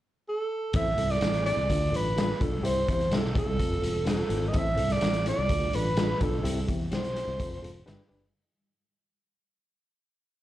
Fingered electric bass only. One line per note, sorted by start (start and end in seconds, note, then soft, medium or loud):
0.74 0.93 A1 medium
0.97 1.17 C2 medium
1.21 1.51 A1 medium
1.57 1.67 C2 medium
1.70 1.89 D2 loud
1.92 2.32 A1 medium
2.41 2.60 B1 medium
2.64 2.84 C2 medium
2.88 3.08 E2 medium
3.11 3.41 B1 medium
3.47 3.57 C2 medium
3.59 3.79 F1 loud
3.82 4.22 E1 medium
4.29 4.50 G#1 medium
4.54 4.74 A1 medium
4.78 4.98 C2 medium
5.02 5.32 A1 medium
5.39 5.48 C2 medium
5.50 5.69 D2 loud
5.74 6.13 A1 medium
6.21 6.41 B1 medium
6.44 6.64 C2 medium
6.68 6.88 E2 medium
6.92 7.22 B1 medium
7.28 7.37 C2 medium
7.40 7.59 F1 loud
7.63 7.83 E1 medium
7.87 7.97 G1 medium
8.11 8.30 F#1 medium